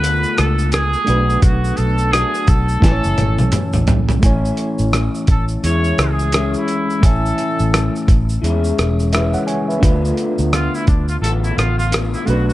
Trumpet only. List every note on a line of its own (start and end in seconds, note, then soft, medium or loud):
0.00 0.39 B4 loud
0.38 0.72 A4 medium
0.72 1.44 G#4 loud
1.42 1.79 F#4 medium
1.77 2.13 A4 medium
2.12 2.50 G#4 loud
2.48 3.88 A4 loud
5.30 5.45 A4 medium
5.65 6.12 C#5 loud
6.11 6.56 G#4 medium
6.57 7.06 E4 medium
7.04 8.09 A4 medium
10.53 10.76 F4 medium
10.75 10.87 E4 medium
10.87 11.07 D4 medium
11.09 11.16 F4 medium
11.22 11.32 A4 medium
11.43 11.59 E4 medium
11.57 11.78 F4 medium
11.78 11.94 F4 medium
12.14 12.28 E4 medium
12.26 12.47 F#4 medium
12.48 12.53 F#4 medium